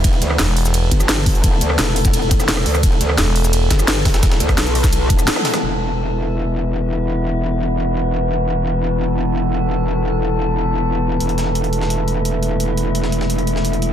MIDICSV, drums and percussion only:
0, 0, Header, 1, 2, 480
1, 0, Start_track
1, 0, Tempo, 348837
1, 58, Time_signature, 4, 2, 24, 8
1, 19166, End_track
2, 0, Start_track
2, 0, Title_t, "Drums"
2, 57, Note_on_c, 9, 42, 89
2, 58, Note_on_c, 9, 36, 123
2, 59, Note_off_c, 9, 42, 0
2, 59, Note_on_c, 9, 42, 79
2, 59, Note_on_c, 9, 53, 78
2, 59, Note_on_c, 9, 82, 50
2, 177, Note_off_c, 9, 42, 0
2, 177, Note_on_c, 9, 42, 45
2, 195, Note_off_c, 9, 36, 0
2, 196, Note_off_c, 9, 53, 0
2, 196, Note_off_c, 9, 82, 0
2, 297, Note_off_c, 9, 42, 0
2, 297, Note_on_c, 9, 38, 42
2, 297, Note_on_c, 9, 42, 70
2, 298, Note_off_c, 9, 42, 0
2, 298, Note_on_c, 9, 42, 89
2, 298, Note_on_c, 9, 53, 58
2, 298, Note_on_c, 9, 82, 29
2, 418, Note_on_c, 9, 37, 47
2, 435, Note_off_c, 9, 38, 0
2, 436, Note_off_c, 9, 42, 0
2, 436, Note_off_c, 9, 53, 0
2, 436, Note_off_c, 9, 82, 0
2, 537, Note_on_c, 9, 38, 120
2, 537, Note_on_c, 9, 42, 90
2, 538, Note_off_c, 9, 38, 0
2, 538, Note_off_c, 9, 42, 0
2, 538, Note_on_c, 9, 38, 123
2, 538, Note_on_c, 9, 42, 80
2, 538, Note_on_c, 9, 53, 80
2, 538, Note_on_c, 9, 82, 52
2, 556, Note_off_c, 9, 37, 0
2, 658, Note_off_c, 9, 42, 0
2, 658, Note_on_c, 9, 42, 45
2, 675, Note_off_c, 9, 38, 0
2, 675, Note_off_c, 9, 53, 0
2, 675, Note_off_c, 9, 82, 0
2, 778, Note_off_c, 9, 42, 0
2, 778, Note_on_c, 9, 42, 68
2, 778, Note_on_c, 9, 46, 83
2, 778, Note_on_c, 9, 53, 57
2, 898, Note_on_c, 9, 38, 42
2, 899, Note_on_c, 9, 82, 63
2, 915, Note_off_c, 9, 42, 0
2, 916, Note_off_c, 9, 46, 0
2, 916, Note_off_c, 9, 53, 0
2, 1018, Note_off_c, 9, 82, 0
2, 1018, Note_on_c, 9, 42, 90
2, 1018, Note_on_c, 9, 53, 80
2, 1018, Note_on_c, 9, 82, 52
2, 1035, Note_off_c, 9, 38, 0
2, 1156, Note_off_c, 9, 42, 0
2, 1156, Note_off_c, 9, 53, 0
2, 1156, Note_off_c, 9, 82, 0
2, 1258, Note_on_c, 9, 36, 61
2, 1258, Note_on_c, 9, 42, 69
2, 1259, Note_off_c, 9, 42, 0
2, 1259, Note_on_c, 9, 42, 89
2, 1259, Note_on_c, 9, 53, 56
2, 1379, Note_on_c, 9, 37, 32
2, 1379, Note_on_c, 9, 82, 59
2, 1395, Note_off_c, 9, 36, 0
2, 1396, Note_off_c, 9, 42, 0
2, 1396, Note_off_c, 9, 53, 0
2, 1498, Note_off_c, 9, 82, 0
2, 1498, Note_on_c, 9, 38, 121
2, 1498, Note_on_c, 9, 42, 77
2, 1498, Note_on_c, 9, 53, 81
2, 1498, Note_on_c, 9, 82, 51
2, 1516, Note_off_c, 9, 37, 0
2, 1636, Note_off_c, 9, 38, 0
2, 1636, Note_off_c, 9, 42, 0
2, 1636, Note_off_c, 9, 53, 0
2, 1636, Note_off_c, 9, 82, 0
2, 1738, Note_on_c, 9, 36, 105
2, 1738, Note_on_c, 9, 46, 84
2, 1738, Note_on_c, 9, 53, 57
2, 1739, Note_on_c, 9, 42, 69
2, 1858, Note_on_c, 9, 82, 28
2, 1875, Note_off_c, 9, 46, 0
2, 1875, Note_off_c, 9, 53, 0
2, 1876, Note_off_c, 9, 36, 0
2, 1876, Note_off_c, 9, 42, 0
2, 1978, Note_off_c, 9, 82, 0
2, 1978, Note_on_c, 9, 36, 116
2, 1978, Note_on_c, 9, 42, 78
2, 1978, Note_on_c, 9, 53, 79
2, 1978, Note_on_c, 9, 82, 53
2, 2116, Note_off_c, 9, 36, 0
2, 2116, Note_off_c, 9, 42, 0
2, 2116, Note_off_c, 9, 53, 0
2, 2116, Note_off_c, 9, 82, 0
2, 2218, Note_on_c, 9, 42, 70
2, 2218, Note_on_c, 9, 53, 56
2, 2218, Note_on_c, 9, 82, 30
2, 2338, Note_on_c, 9, 37, 47
2, 2356, Note_off_c, 9, 42, 0
2, 2356, Note_off_c, 9, 53, 0
2, 2356, Note_off_c, 9, 82, 0
2, 2458, Note_on_c, 9, 38, 119
2, 2458, Note_on_c, 9, 42, 91
2, 2458, Note_on_c, 9, 53, 81
2, 2458, Note_on_c, 9, 82, 54
2, 2475, Note_off_c, 9, 37, 0
2, 2579, Note_off_c, 9, 38, 0
2, 2579, Note_on_c, 9, 38, 48
2, 2595, Note_off_c, 9, 53, 0
2, 2595, Note_off_c, 9, 82, 0
2, 2596, Note_off_c, 9, 42, 0
2, 2698, Note_on_c, 9, 42, 71
2, 2698, Note_on_c, 9, 46, 81
2, 2698, Note_on_c, 9, 53, 57
2, 2716, Note_off_c, 9, 38, 0
2, 2818, Note_on_c, 9, 36, 103
2, 2818, Note_on_c, 9, 38, 48
2, 2818, Note_on_c, 9, 82, 66
2, 2836, Note_off_c, 9, 42, 0
2, 2836, Note_off_c, 9, 46, 0
2, 2836, Note_off_c, 9, 53, 0
2, 2938, Note_off_c, 9, 82, 0
2, 2938, Note_on_c, 9, 42, 79
2, 2938, Note_on_c, 9, 53, 78
2, 2938, Note_on_c, 9, 82, 55
2, 2939, Note_off_c, 9, 42, 0
2, 2939, Note_on_c, 9, 42, 90
2, 2956, Note_off_c, 9, 36, 0
2, 2956, Note_off_c, 9, 38, 0
2, 3058, Note_off_c, 9, 42, 0
2, 3058, Note_on_c, 9, 42, 44
2, 3076, Note_off_c, 9, 53, 0
2, 3076, Note_off_c, 9, 82, 0
2, 3178, Note_on_c, 9, 36, 105
2, 3179, Note_off_c, 9, 42, 0
2, 3179, Note_on_c, 9, 42, 95
2, 3179, Note_on_c, 9, 53, 57
2, 3299, Note_on_c, 9, 37, 33
2, 3299, Note_on_c, 9, 38, 41
2, 3299, Note_on_c, 9, 82, 62
2, 3316, Note_off_c, 9, 36, 0
2, 3316, Note_off_c, 9, 42, 0
2, 3316, Note_off_c, 9, 53, 0
2, 3418, Note_off_c, 9, 38, 0
2, 3418, Note_on_c, 9, 38, 123
2, 3418, Note_on_c, 9, 42, 92
2, 3419, Note_off_c, 9, 38, 0
2, 3419, Note_off_c, 9, 42, 0
2, 3419, Note_off_c, 9, 82, 0
2, 3419, Note_on_c, 9, 38, 118
2, 3419, Note_on_c, 9, 42, 81
2, 3419, Note_on_c, 9, 53, 80
2, 3419, Note_on_c, 9, 82, 52
2, 3436, Note_off_c, 9, 37, 0
2, 3539, Note_off_c, 9, 42, 0
2, 3539, Note_on_c, 9, 37, 55
2, 3539, Note_on_c, 9, 42, 46
2, 3556, Note_off_c, 9, 38, 0
2, 3556, Note_off_c, 9, 53, 0
2, 3556, Note_off_c, 9, 82, 0
2, 3659, Note_off_c, 9, 42, 0
2, 3659, Note_on_c, 9, 42, 68
2, 3659, Note_on_c, 9, 46, 83
2, 3659, Note_on_c, 9, 53, 57
2, 3676, Note_off_c, 9, 37, 0
2, 3779, Note_on_c, 9, 37, 46
2, 3779, Note_on_c, 9, 82, 30
2, 3796, Note_off_c, 9, 42, 0
2, 3796, Note_off_c, 9, 46, 0
2, 3796, Note_off_c, 9, 53, 0
2, 3898, Note_off_c, 9, 82, 0
2, 3898, Note_on_c, 9, 36, 117
2, 3898, Note_on_c, 9, 42, 85
2, 3898, Note_on_c, 9, 53, 76
2, 3898, Note_on_c, 9, 82, 54
2, 3916, Note_off_c, 9, 37, 0
2, 4018, Note_off_c, 9, 42, 0
2, 4018, Note_on_c, 9, 42, 44
2, 4036, Note_off_c, 9, 36, 0
2, 4036, Note_off_c, 9, 53, 0
2, 4036, Note_off_c, 9, 82, 0
2, 4138, Note_off_c, 9, 42, 0
2, 4138, Note_on_c, 9, 38, 42
2, 4138, Note_on_c, 9, 42, 100
2, 4138, Note_on_c, 9, 53, 56
2, 4138, Note_on_c, 9, 82, 31
2, 4259, Note_on_c, 9, 37, 48
2, 4276, Note_off_c, 9, 38, 0
2, 4276, Note_off_c, 9, 42, 0
2, 4276, Note_off_c, 9, 53, 0
2, 4276, Note_off_c, 9, 82, 0
2, 4378, Note_on_c, 9, 38, 122
2, 4378, Note_on_c, 9, 42, 90
2, 4378, Note_on_c, 9, 53, 80
2, 4378, Note_on_c, 9, 82, 55
2, 4396, Note_off_c, 9, 37, 0
2, 4499, Note_off_c, 9, 42, 0
2, 4499, Note_on_c, 9, 42, 45
2, 4516, Note_off_c, 9, 38, 0
2, 4516, Note_off_c, 9, 53, 0
2, 4516, Note_off_c, 9, 82, 0
2, 4618, Note_off_c, 9, 42, 0
2, 4618, Note_on_c, 9, 42, 69
2, 4618, Note_on_c, 9, 46, 77
2, 4618, Note_on_c, 9, 53, 56
2, 4738, Note_on_c, 9, 38, 43
2, 4738, Note_on_c, 9, 82, 67
2, 4755, Note_off_c, 9, 42, 0
2, 4756, Note_off_c, 9, 46, 0
2, 4756, Note_off_c, 9, 53, 0
2, 4858, Note_on_c, 9, 42, 88
2, 4859, Note_off_c, 9, 42, 0
2, 4859, Note_off_c, 9, 82, 0
2, 4859, Note_on_c, 9, 42, 84
2, 4859, Note_on_c, 9, 53, 79
2, 4859, Note_on_c, 9, 82, 55
2, 4875, Note_off_c, 9, 38, 0
2, 4996, Note_off_c, 9, 42, 0
2, 4996, Note_off_c, 9, 53, 0
2, 4996, Note_off_c, 9, 82, 0
2, 5098, Note_on_c, 9, 36, 59
2, 5098, Note_on_c, 9, 38, 108
2, 5098, Note_on_c, 9, 42, 97
2, 5098, Note_on_c, 9, 53, 55
2, 5218, Note_off_c, 9, 42, 0
2, 5218, Note_on_c, 9, 37, 33
2, 5218, Note_on_c, 9, 42, 40
2, 5218, Note_on_c, 9, 82, 63
2, 5236, Note_off_c, 9, 36, 0
2, 5236, Note_off_c, 9, 38, 0
2, 5236, Note_off_c, 9, 53, 0
2, 5338, Note_off_c, 9, 42, 0
2, 5338, Note_off_c, 9, 82, 0
2, 5338, Note_on_c, 9, 38, 115
2, 5338, Note_on_c, 9, 42, 84
2, 5338, Note_on_c, 9, 53, 78
2, 5338, Note_on_c, 9, 82, 55
2, 5356, Note_off_c, 9, 37, 0
2, 5458, Note_off_c, 9, 38, 0
2, 5458, Note_on_c, 9, 38, 39
2, 5476, Note_off_c, 9, 42, 0
2, 5476, Note_off_c, 9, 53, 0
2, 5476, Note_off_c, 9, 82, 0
2, 5577, Note_off_c, 9, 38, 0
2, 5577, Note_on_c, 9, 38, 107
2, 5577, Note_on_c, 9, 42, 79
2, 5578, Note_on_c, 9, 36, 100
2, 5578, Note_on_c, 9, 46, 79
2, 5578, Note_on_c, 9, 53, 57
2, 5697, Note_off_c, 9, 38, 0
2, 5697, Note_off_c, 9, 42, 0
2, 5697, Note_on_c, 9, 38, 108
2, 5697, Note_on_c, 9, 42, 83
2, 5699, Note_on_c, 9, 82, 29
2, 5716, Note_off_c, 9, 36, 0
2, 5716, Note_off_c, 9, 46, 0
2, 5716, Note_off_c, 9, 53, 0
2, 5817, Note_off_c, 9, 38, 0
2, 5817, Note_off_c, 9, 42, 0
2, 5817, Note_on_c, 9, 38, 108
2, 5817, Note_on_c, 9, 42, 83
2, 5818, Note_on_c, 9, 36, 119
2, 5819, Note_off_c, 9, 42, 0
2, 5819, Note_off_c, 9, 82, 0
2, 5819, Note_on_c, 9, 42, 86
2, 5819, Note_on_c, 9, 53, 75
2, 5819, Note_on_c, 9, 82, 53
2, 5937, Note_off_c, 9, 38, 0
2, 5937, Note_off_c, 9, 42, 0
2, 5937, Note_on_c, 9, 38, 108
2, 5937, Note_on_c, 9, 42, 80
2, 5956, Note_off_c, 9, 36, 0
2, 5956, Note_off_c, 9, 53, 0
2, 5956, Note_off_c, 9, 82, 0
2, 6057, Note_off_c, 9, 38, 0
2, 6057, Note_on_c, 9, 38, 43
2, 6059, Note_off_c, 9, 42, 0
2, 6059, Note_on_c, 9, 42, 101
2, 6059, Note_on_c, 9, 53, 54
2, 6059, Note_on_c, 9, 82, 30
2, 6177, Note_off_c, 9, 42, 0
2, 6177, Note_on_c, 9, 42, 64
2, 6178, Note_on_c, 9, 36, 61
2, 6179, Note_on_c, 9, 37, 49
2, 6194, Note_off_c, 9, 38, 0
2, 6196, Note_off_c, 9, 53, 0
2, 6196, Note_off_c, 9, 82, 0
2, 6297, Note_off_c, 9, 42, 0
2, 6297, Note_on_c, 9, 38, 120
2, 6297, Note_on_c, 9, 42, 90
2, 6299, Note_off_c, 9, 38, 0
2, 6299, Note_off_c, 9, 42, 0
2, 6299, Note_on_c, 9, 38, 122
2, 6299, Note_on_c, 9, 42, 90
2, 6299, Note_on_c, 9, 53, 74
2, 6299, Note_on_c, 9, 82, 52
2, 6316, Note_off_c, 9, 36, 0
2, 6317, Note_off_c, 9, 37, 0
2, 6417, Note_off_c, 9, 38, 0
2, 6417, Note_on_c, 9, 38, 48
2, 6419, Note_off_c, 9, 82, 0
2, 6419, Note_on_c, 9, 82, 29
2, 6436, Note_off_c, 9, 42, 0
2, 6436, Note_off_c, 9, 53, 0
2, 6537, Note_on_c, 9, 42, 68
2, 6538, Note_on_c, 9, 46, 75
2, 6538, Note_on_c, 9, 53, 53
2, 6554, Note_off_c, 9, 38, 0
2, 6556, Note_off_c, 9, 82, 0
2, 6657, Note_on_c, 9, 38, 48
2, 6658, Note_off_c, 9, 38, 0
2, 6658, Note_on_c, 9, 36, 105
2, 6658, Note_on_c, 9, 38, 37
2, 6658, Note_on_c, 9, 82, 67
2, 6674, Note_off_c, 9, 42, 0
2, 6676, Note_off_c, 9, 46, 0
2, 6676, Note_off_c, 9, 53, 0
2, 6776, Note_on_c, 9, 42, 82
2, 6778, Note_off_c, 9, 42, 0
2, 6778, Note_off_c, 9, 82, 0
2, 6778, Note_on_c, 9, 42, 88
2, 6778, Note_on_c, 9, 53, 76
2, 6778, Note_on_c, 9, 82, 52
2, 6796, Note_off_c, 9, 36, 0
2, 6796, Note_off_c, 9, 38, 0
2, 6915, Note_off_c, 9, 42, 0
2, 6915, Note_off_c, 9, 53, 0
2, 6915, Note_off_c, 9, 82, 0
2, 7017, Note_on_c, 9, 42, 63
2, 7018, Note_off_c, 9, 42, 0
2, 7018, Note_on_c, 9, 36, 103
2, 7018, Note_on_c, 9, 42, 99
2, 7018, Note_on_c, 9, 53, 51
2, 7138, Note_on_c, 9, 37, 34
2, 7138, Note_on_c, 9, 82, 61
2, 7155, Note_off_c, 9, 36, 0
2, 7155, Note_off_c, 9, 42, 0
2, 7155, Note_off_c, 9, 53, 0
2, 7257, Note_on_c, 9, 38, 110
2, 7257, Note_on_c, 9, 42, 85
2, 7258, Note_off_c, 9, 38, 0
2, 7258, Note_off_c, 9, 42, 0
2, 7258, Note_off_c, 9, 82, 0
2, 7258, Note_on_c, 9, 38, 119
2, 7258, Note_on_c, 9, 42, 87
2, 7258, Note_on_c, 9, 53, 75
2, 7258, Note_on_c, 9, 82, 54
2, 7276, Note_off_c, 9, 37, 0
2, 7377, Note_off_c, 9, 42, 0
2, 7377, Note_on_c, 9, 42, 45
2, 7378, Note_on_c, 9, 37, 56
2, 7396, Note_off_c, 9, 38, 0
2, 7396, Note_off_c, 9, 53, 0
2, 7396, Note_off_c, 9, 82, 0
2, 7498, Note_off_c, 9, 42, 0
2, 7498, Note_on_c, 9, 38, 106
2, 7498, Note_on_c, 9, 42, 80
2, 7498, Note_on_c, 9, 46, 79
2, 7498, Note_on_c, 9, 53, 52
2, 7515, Note_off_c, 9, 37, 0
2, 7617, Note_off_c, 9, 38, 0
2, 7617, Note_off_c, 9, 42, 0
2, 7617, Note_on_c, 9, 38, 109
2, 7617, Note_on_c, 9, 42, 82
2, 7618, Note_on_c, 9, 37, 49
2, 7618, Note_on_c, 9, 82, 28
2, 7635, Note_off_c, 9, 46, 0
2, 7635, Note_off_c, 9, 53, 0
2, 7755, Note_off_c, 9, 38, 0
2, 7755, Note_off_c, 9, 42, 0
2, 7756, Note_off_c, 9, 37, 0
2, 7756, Note_off_c, 9, 82, 0
2, 15417, Note_on_c, 9, 42, 84
2, 15537, Note_off_c, 9, 42, 0
2, 15537, Note_on_c, 9, 42, 41
2, 15657, Note_off_c, 9, 42, 0
2, 15657, Note_on_c, 9, 38, 39
2, 15657, Note_on_c, 9, 42, 66
2, 15795, Note_off_c, 9, 38, 0
2, 15795, Note_off_c, 9, 42, 0
2, 15897, Note_on_c, 9, 42, 86
2, 16017, Note_off_c, 9, 42, 0
2, 16017, Note_on_c, 9, 42, 42
2, 16136, Note_off_c, 9, 42, 0
2, 16136, Note_on_c, 9, 42, 66
2, 16257, Note_on_c, 9, 38, 41
2, 16274, Note_off_c, 9, 42, 0
2, 16377, Note_on_c, 9, 42, 83
2, 16395, Note_off_c, 9, 38, 0
2, 16515, Note_off_c, 9, 42, 0
2, 16618, Note_on_c, 9, 42, 66
2, 16755, Note_off_c, 9, 42, 0
2, 16858, Note_on_c, 9, 42, 88
2, 16995, Note_off_c, 9, 42, 0
2, 17098, Note_on_c, 9, 42, 65
2, 17235, Note_off_c, 9, 42, 0
2, 17337, Note_on_c, 9, 42, 85
2, 17475, Note_off_c, 9, 42, 0
2, 17577, Note_on_c, 9, 42, 67
2, 17715, Note_off_c, 9, 42, 0
2, 17817, Note_on_c, 9, 42, 86
2, 17937, Note_on_c, 9, 38, 46
2, 17955, Note_off_c, 9, 42, 0
2, 18058, Note_on_c, 9, 42, 63
2, 18075, Note_off_c, 9, 38, 0
2, 18178, Note_on_c, 9, 38, 44
2, 18195, Note_off_c, 9, 42, 0
2, 18298, Note_on_c, 9, 42, 84
2, 18315, Note_off_c, 9, 38, 0
2, 18418, Note_off_c, 9, 42, 0
2, 18418, Note_on_c, 9, 42, 42
2, 18537, Note_off_c, 9, 42, 0
2, 18537, Note_on_c, 9, 42, 66
2, 18658, Note_on_c, 9, 38, 39
2, 18675, Note_off_c, 9, 42, 0
2, 18777, Note_on_c, 9, 42, 85
2, 18795, Note_off_c, 9, 38, 0
2, 18897, Note_off_c, 9, 42, 0
2, 18897, Note_on_c, 9, 42, 44
2, 19017, Note_off_c, 9, 42, 0
2, 19017, Note_on_c, 9, 42, 66
2, 19155, Note_off_c, 9, 42, 0
2, 19166, End_track
0, 0, End_of_file